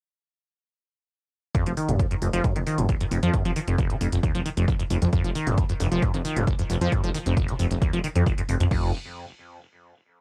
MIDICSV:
0, 0, Header, 1, 4, 480
1, 0, Start_track
1, 0, Tempo, 447761
1, 1659, Time_signature, 4, 2, 24, 8
1, 10943, End_track
2, 0, Start_track
2, 0, Title_t, "Acid bass"
2, 0, Program_c, 0, 38
2, 1659, Note_on_c, 0, 41, 97
2, 1761, Note_off_c, 0, 41, 0
2, 1783, Note_on_c, 0, 53, 76
2, 1847, Note_off_c, 0, 53, 0
2, 1898, Note_on_c, 0, 51, 75
2, 2022, Note_on_c, 0, 42, 76
2, 2038, Note_off_c, 0, 51, 0
2, 2138, Note_on_c, 0, 41, 83
2, 2154, Note_off_c, 0, 42, 0
2, 2207, Note_off_c, 0, 41, 0
2, 2263, Note_on_c, 0, 41, 96
2, 2301, Note_off_c, 0, 41, 0
2, 2379, Note_on_c, 0, 41, 75
2, 2447, Note_off_c, 0, 41, 0
2, 2502, Note_on_c, 0, 53, 104
2, 2618, Note_on_c, 0, 41, 101
2, 2634, Note_off_c, 0, 53, 0
2, 2721, Note_off_c, 0, 41, 0
2, 2742, Note_on_c, 0, 51, 75
2, 2781, Note_off_c, 0, 51, 0
2, 2858, Note_on_c, 0, 51, 78
2, 2982, Note_on_c, 0, 42, 75
2, 2998, Note_off_c, 0, 51, 0
2, 3078, Note_off_c, 0, 42, 0
2, 3099, Note_on_c, 0, 29, 98
2, 3167, Note_off_c, 0, 29, 0
2, 3222, Note_on_c, 0, 41, 103
2, 3261, Note_off_c, 0, 41, 0
2, 3338, Note_on_c, 0, 41, 77
2, 3407, Note_off_c, 0, 41, 0
2, 3462, Note_on_c, 0, 53, 103
2, 3578, Note_on_c, 0, 41, 102
2, 3594, Note_off_c, 0, 53, 0
2, 3681, Note_off_c, 0, 41, 0
2, 3702, Note_on_c, 0, 53, 102
2, 3766, Note_off_c, 0, 53, 0
2, 3818, Note_on_c, 0, 51, 78
2, 3859, Note_off_c, 0, 51, 0
2, 3941, Note_on_c, 0, 41, 78
2, 4038, Note_off_c, 0, 41, 0
2, 4057, Note_on_c, 0, 29, 101
2, 4182, Note_on_c, 0, 53, 75
2, 4198, Note_off_c, 0, 29, 0
2, 4246, Note_off_c, 0, 53, 0
2, 4298, Note_on_c, 0, 41, 77
2, 4366, Note_off_c, 0, 41, 0
2, 4421, Note_on_c, 0, 29, 100
2, 4460, Note_off_c, 0, 29, 0
2, 4538, Note_on_c, 0, 39, 82
2, 4640, Note_off_c, 0, 39, 0
2, 4661, Note_on_c, 0, 53, 101
2, 4726, Note_off_c, 0, 53, 0
2, 4778, Note_on_c, 0, 51, 80
2, 4819, Note_off_c, 0, 51, 0
2, 4902, Note_on_c, 0, 41, 75
2, 4998, Note_off_c, 0, 41, 0
2, 5017, Note_on_c, 0, 29, 99
2, 5086, Note_off_c, 0, 29, 0
2, 5141, Note_on_c, 0, 41, 76
2, 5180, Note_off_c, 0, 41, 0
2, 5257, Note_on_c, 0, 41, 79
2, 5326, Note_off_c, 0, 41, 0
2, 5381, Note_on_c, 0, 29, 103
2, 5420, Note_off_c, 0, 29, 0
2, 5497, Note_on_c, 0, 41, 104
2, 5600, Note_off_c, 0, 41, 0
2, 5621, Note_on_c, 0, 53, 79
2, 5686, Note_off_c, 0, 53, 0
2, 5738, Note_on_c, 0, 51, 76
2, 5862, Note_on_c, 0, 42, 75
2, 5878, Note_off_c, 0, 51, 0
2, 5978, Note_on_c, 0, 41, 83
2, 5994, Note_off_c, 0, 42, 0
2, 6046, Note_off_c, 0, 41, 0
2, 6101, Note_on_c, 0, 41, 101
2, 6140, Note_off_c, 0, 41, 0
2, 6218, Note_on_c, 0, 41, 77
2, 6287, Note_off_c, 0, 41, 0
2, 6342, Note_on_c, 0, 53, 102
2, 6459, Note_on_c, 0, 41, 103
2, 6475, Note_off_c, 0, 53, 0
2, 6561, Note_off_c, 0, 41, 0
2, 6582, Note_on_c, 0, 51, 77
2, 6621, Note_off_c, 0, 51, 0
2, 6699, Note_on_c, 0, 51, 78
2, 6822, Note_on_c, 0, 42, 80
2, 6839, Note_off_c, 0, 51, 0
2, 6918, Note_off_c, 0, 42, 0
2, 6938, Note_on_c, 0, 29, 100
2, 7007, Note_off_c, 0, 29, 0
2, 7062, Note_on_c, 0, 41, 103
2, 7101, Note_off_c, 0, 41, 0
2, 7178, Note_on_c, 0, 41, 80
2, 7247, Note_off_c, 0, 41, 0
2, 7301, Note_on_c, 0, 53, 103
2, 7418, Note_on_c, 0, 41, 103
2, 7434, Note_off_c, 0, 53, 0
2, 7520, Note_off_c, 0, 41, 0
2, 7542, Note_on_c, 0, 53, 105
2, 7606, Note_off_c, 0, 53, 0
2, 7658, Note_on_c, 0, 51, 78
2, 7699, Note_off_c, 0, 51, 0
2, 7781, Note_on_c, 0, 41, 77
2, 7878, Note_off_c, 0, 41, 0
2, 7897, Note_on_c, 0, 29, 103
2, 8021, Note_on_c, 0, 53, 76
2, 8037, Note_off_c, 0, 29, 0
2, 8086, Note_off_c, 0, 53, 0
2, 8138, Note_on_c, 0, 41, 76
2, 8206, Note_off_c, 0, 41, 0
2, 8261, Note_on_c, 0, 29, 101
2, 8300, Note_off_c, 0, 29, 0
2, 8377, Note_on_c, 0, 39, 86
2, 8480, Note_off_c, 0, 39, 0
2, 8501, Note_on_c, 0, 53, 101
2, 8566, Note_off_c, 0, 53, 0
2, 8617, Note_on_c, 0, 51, 77
2, 8659, Note_off_c, 0, 51, 0
2, 8741, Note_on_c, 0, 41, 77
2, 8838, Note_off_c, 0, 41, 0
2, 8858, Note_on_c, 0, 29, 100
2, 8927, Note_off_c, 0, 29, 0
2, 8982, Note_on_c, 0, 41, 79
2, 9021, Note_off_c, 0, 41, 0
2, 9099, Note_on_c, 0, 41, 81
2, 9167, Note_off_c, 0, 41, 0
2, 9223, Note_on_c, 0, 29, 104
2, 9261, Note_off_c, 0, 29, 0
2, 9340, Note_on_c, 0, 41, 95
2, 9563, Note_off_c, 0, 41, 0
2, 10943, End_track
3, 0, Start_track
3, 0, Title_t, "Detuned saw bass"
3, 0, Program_c, 1, 39
3, 1783, Note_on_c, 1, 29, 77
3, 1859, Note_off_c, 1, 29, 0
3, 2022, Note_on_c, 1, 29, 77
3, 2099, Note_off_c, 1, 29, 0
3, 2378, Note_on_c, 1, 29, 96
3, 2460, Note_off_c, 1, 29, 0
3, 2502, Note_on_c, 1, 29, 78
3, 2579, Note_off_c, 1, 29, 0
3, 2741, Note_on_c, 1, 29, 78
3, 2818, Note_off_c, 1, 29, 0
3, 2982, Note_on_c, 1, 29, 81
3, 3059, Note_off_c, 1, 29, 0
3, 3338, Note_on_c, 1, 29, 93
3, 3420, Note_off_c, 1, 29, 0
3, 3462, Note_on_c, 1, 41, 77
3, 3539, Note_off_c, 1, 41, 0
3, 3701, Note_on_c, 1, 29, 78
3, 3778, Note_off_c, 1, 29, 0
3, 3942, Note_on_c, 1, 29, 78
3, 4019, Note_off_c, 1, 29, 0
3, 4298, Note_on_c, 1, 29, 93
3, 4380, Note_off_c, 1, 29, 0
3, 4421, Note_on_c, 1, 29, 83
3, 4498, Note_off_c, 1, 29, 0
3, 4661, Note_on_c, 1, 29, 79
3, 4738, Note_off_c, 1, 29, 0
3, 4901, Note_on_c, 1, 29, 80
3, 4978, Note_off_c, 1, 29, 0
3, 5258, Note_on_c, 1, 29, 92
3, 5340, Note_off_c, 1, 29, 0
3, 5382, Note_on_c, 1, 41, 81
3, 5459, Note_off_c, 1, 41, 0
3, 5622, Note_on_c, 1, 29, 75
3, 5699, Note_off_c, 1, 29, 0
3, 5862, Note_on_c, 1, 29, 77
3, 5939, Note_off_c, 1, 29, 0
3, 6219, Note_on_c, 1, 29, 95
3, 6300, Note_off_c, 1, 29, 0
3, 6342, Note_on_c, 1, 29, 82
3, 6419, Note_off_c, 1, 29, 0
3, 6582, Note_on_c, 1, 29, 81
3, 6659, Note_off_c, 1, 29, 0
3, 6822, Note_on_c, 1, 29, 83
3, 6899, Note_off_c, 1, 29, 0
3, 7178, Note_on_c, 1, 29, 94
3, 7260, Note_off_c, 1, 29, 0
3, 7302, Note_on_c, 1, 41, 82
3, 7379, Note_off_c, 1, 41, 0
3, 7542, Note_on_c, 1, 29, 78
3, 7619, Note_off_c, 1, 29, 0
3, 7782, Note_on_c, 1, 29, 79
3, 7859, Note_off_c, 1, 29, 0
3, 8138, Note_on_c, 1, 29, 93
3, 8220, Note_off_c, 1, 29, 0
3, 8262, Note_on_c, 1, 29, 81
3, 8339, Note_off_c, 1, 29, 0
3, 8502, Note_on_c, 1, 29, 80
3, 8579, Note_off_c, 1, 29, 0
3, 8742, Note_on_c, 1, 41, 80
3, 8819, Note_off_c, 1, 41, 0
3, 9098, Note_on_c, 1, 29, 94
3, 9180, Note_off_c, 1, 29, 0
3, 9222, Note_on_c, 1, 41, 81
3, 9299, Note_off_c, 1, 41, 0
3, 9339, Note_on_c, 1, 29, 94
3, 9562, Note_off_c, 1, 29, 0
3, 10943, End_track
4, 0, Start_track
4, 0, Title_t, "Drums"
4, 1658, Note_on_c, 9, 36, 111
4, 1658, Note_on_c, 9, 42, 67
4, 1765, Note_off_c, 9, 36, 0
4, 1765, Note_off_c, 9, 42, 0
4, 1782, Note_on_c, 9, 42, 68
4, 1889, Note_off_c, 9, 42, 0
4, 1898, Note_on_c, 9, 46, 100
4, 2005, Note_off_c, 9, 46, 0
4, 2022, Note_on_c, 9, 42, 66
4, 2129, Note_off_c, 9, 42, 0
4, 2138, Note_on_c, 9, 36, 120
4, 2139, Note_on_c, 9, 42, 70
4, 2245, Note_off_c, 9, 36, 0
4, 2246, Note_off_c, 9, 42, 0
4, 2261, Note_on_c, 9, 42, 67
4, 2369, Note_off_c, 9, 42, 0
4, 2377, Note_on_c, 9, 46, 104
4, 2485, Note_off_c, 9, 46, 0
4, 2501, Note_on_c, 9, 42, 69
4, 2608, Note_off_c, 9, 42, 0
4, 2617, Note_on_c, 9, 42, 68
4, 2618, Note_on_c, 9, 36, 120
4, 2724, Note_off_c, 9, 42, 0
4, 2725, Note_off_c, 9, 36, 0
4, 2741, Note_on_c, 9, 42, 68
4, 2848, Note_off_c, 9, 42, 0
4, 2858, Note_on_c, 9, 46, 102
4, 2965, Note_off_c, 9, 46, 0
4, 2981, Note_on_c, 9, 42, 67
4, 3089, Note_off_c, 9, 42, 0
4, 3097, Note_on_c, 9, 42, 67
4, 3098, Note_on_c, 9, 36, 118
4, 3204, Note_off_c, 9, 42, 0
4, 3205, Note_off_c, 9, 36, 0
4, 3221, Note_on_c, 9, 42, 69
4, 3329, Note_off_c, 9, 42, 0
4, 3337, Note_on_c, 9, 46, 105
4, 3444, Note_off_c, 9, 46, 0
4, 3461, Note_on_c, 9, 42, 69
4, 3568, Note_off_c, 9, 42, 0
4, 3576, Note_on_c, 9, 42, 68
4, 3577, Note_on_c, 9, 36, 118
4, 3683, Note_off_c, 9, 42, 0
4, 3685, Note_off_c, 9, 36, 0
4, 3701, Note_on_c, 9, 42, 70
4, 3808, Note_off_c, 9, 42, 0
4, 3817, Note_on_c, 9, 46, 105
4, 3924, Note_off_c, 9, 46, 0
4, 3941, Note_on_c, 9, 42, 68
4, 4048, Note_off_c, 9, 42, 0
4, 4057, Note_on_c, 9, 42, 71
4, 4058, Note_on_c, 9, 36, 123
4, 4164, Note_off_c, 9, 42, 0
4, 4165, Note_off_c, 9, 36, 0
4, 4181, Note_on_c, 9, 42, 68
4, 4288, Note_off_c, 9, 42, 0
4, 4298, Note_on_c, 9, 46, 108
4, 4405, Note_off_c, 9, 46, 0
4, 4421, Note_on_c, 9, 42, 70
4, 4528, Note_off_c, 9, 42, 0
4, 4538, Note_on_c, 9, 36, 125
4, 4538, Note_on_c, 9, 42, 69
4, 4645, Note_off_c, 9, 36, 0
4, 4645, Note_off_c, 9, 42, 0
4, 4662, Note_on_c, 9, 42, 70
4, 4769, Note_off_c, 9, 42, 0
4, 4778, Note_on_c, 9, 46, 105
4, 4885, Note_off_c, 9, 46, 0
4, 4901, Note_on_c, 9, 42, 70
4, 5008, Note_off_c, 9, 42, 0
4, 5018, Note_on_c, 9, 36, 121
4, 5018, Note_on_c, 9, 46, 63
4, 5125, Note_off_c, 9, 36, 0
4, 5125, Note_off_c, 9, 46, 0
4, 5141, Note_on_c, 9, 42, 70
4, 5249, Note_off_c, 9, 42, 0
4, 5257, Note_on_c, 9, 46, 109
4, 5364, Note_off_c, 9, 46, 0
4, 5380, Note_on_c, 9, 42, 68
4, 5488, Note_off_c, 9, 42, 0
4, 5497, Note_on_c, 9, 42, 67
4, 5498, Note_on_c, 9, 36, 123
4, 5604, Note_off_c, 9, 42, 0
4, 5605, Note_off_c, 9, 36, 0
4, 5621, Note_on_c, 9, 42, 68
4, 5728, Note_off_c, 9, 42, 0
4, 5737, Note_on_c, 9, 46, 105
4, 5845, Note_off_c, 9, 46, 0
4, 5861, Note_on_c, 9, 42, 68
4, 5969, Note_off_c, 9, 42, 0
4, 5977, Note_on_c, 9, 42, 70
4, 5978, Note_on_c, 9, 36, 126
4, 6085, Note_off_c, 9, 36, 0
4, 6085, Note_off_c, 9, 42, 0
4, 6102, Note_on_c, 9, 42, 66
4, 6209, Note_off_c, 9, 42, 0
4, 6217, Note_on_c, 9, 46, 109
4, 6324, Note_off_c, 9, 46, 0
4, 6341, Note_on_c, 9, 42, 70
4, 6449, Note_off_c, 9, 42, 0
4, 6457, Note_on_c, 9, 42, 68
4, 6458, Note_on_c, 9, 36, 127
4, 6564, Note_off_c, 9, 42, 0
4, 6565, Note_off_c, 9, 36, 0
4, 6581, Note_on_c, 9, 42, 69
4, 6688, Note_off_c, 9, 42, 0
4, 6697, Note_on_c, 9, 46, 112
4, 6805, Note_off_c, 9, 46, 0
4, 6822, Note_on_c, 9, 42, 70
4, 6929, Note_off_c, 9, 42, 0
4, 6938, Note_on_c, 9, 36, 127
4, 6938, Note_on_c, 9, 42, 69
4, 7045, Note_off_c, 9, 36, 0
4, 7045, Note_off_c, 9, 42, 0
4, 7061, Note_on_c, 9, 42, 68
4, 7168, Note_off_c, 9, 42, 0
4, 7178, Note_on_c, 9, 46, 109
4, 7285, Note_off_c, 9, 46, 0
4, 7302, Note_on_c, 9, 42, 68
4, 7409, Note_off_c, 9, 42, 0
4, 7418, Note_on_c, 9, 36, 122
4, 7418, Note_on_c, 9, 42, 66
4, 7525, Note_off_c, 9, 36, 0
4, 7525, Note_off_c, 9, 42, 0
4, 7541, Note_on_c, 9, 42, 66
4, 7649, Note_off_c, 9, 42, 0
4, 7658, Note_on_c, 9, 46, 108
4, 7765, Note_off_c, 9, 46, 0
4, 7782, Note_on_c, 9, 42, 65
4, 7889, Note_off_c, 9, 42, 0
4, 7898, Note_on_c, 9, 36, 126
4, 7899, Note_on_c, 9, 42, 69
4, 8005, Note_off_c, 9, 36, 0
4, 8006, Note_off_c, 9, 42, 0
4, 8022, Note_on_c, 9, 42, 65
4, 8129, Note_off_c, 9, 42, 0
4, 8138, Note_on_c, 9, 46, 107
4, 8245, Note_off_c, 9, 46, 0
4, 8262, Note_on_c, 9, 42, 67
4, 8369, Note_off_c, 9, 42, 0
4, 8378, Note_on_c, 9, 36, 127
4, 8378, Note_on_c, 9, 42, 65
4, 8485, Note_off_c, 9, 36, 0
4, 8486, Note_off_c, 9, 42, 0
4, 8502, Note_on_c, 9, 42, 66
4, 8609, Note_off_c, 9, 42, 0
4, 8618, Note_on_c, 9, 46, 109
4, 8725, Note_off_c, 9, 46, 0
4, 8741, Note_on_c, 9, 42, 65
4, 8849, Note_off_c, 9, 42, 0
4, 8858, Note_on_c, 9, 36, 127
4, 8859, Note_on_c, 9, 46, 64
4, 8966, Note_off_c, 9, 36, 0
4, 8966, Note_off_c, 9, 46, 0
4, 8982, Note_on_c, 9, 42, 67
4, 9090, Note_off_c, 9, 42, 0
4, 9099, Note_on_c, 9, 46, 112
4, 9206, Note_off_c, 9, 46, 0
4, 9223, Note_on_c, 9, 42, 67
4, 9330, Note_off_c, 9, 42, 0
4, 9339, Note_on_c, 9, 36, 113
4, 9339, Note_on_c, 9, 49, 88
4, 9446, Note_off_c, 9, 36, 0
4, 9446, Note_off_c, 9, 49, 0
4, 10943, End_track
0, 0, End_of_file